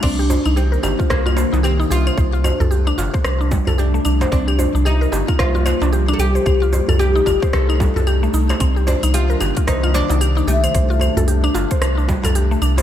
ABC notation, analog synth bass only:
X:1
M:4/4
L:1/16
Q:"Swing 16ths" 1/4=112
K:Cdor
V:1 name="Analog synth bass" clef=bass
C,,2 z C,,2 z G,,, z C,,2 z C,,2 z C,, z | C,,2 z C,,2 z G,,, z C,,2 z C,,2 z C,, z | C,,2 z C,,2 z G,,, z C,,2 z C,,2 z C,, z | C,,2 z C,,2 z G,,, z C,,2 z C,,2 z C,, z |
C,,2 z C,,2 z G,,, z C,,2 z C,,2 z C,, z | C,,2 z C,,2 z G,,, z C,,2 z C,,2 z C,, z |]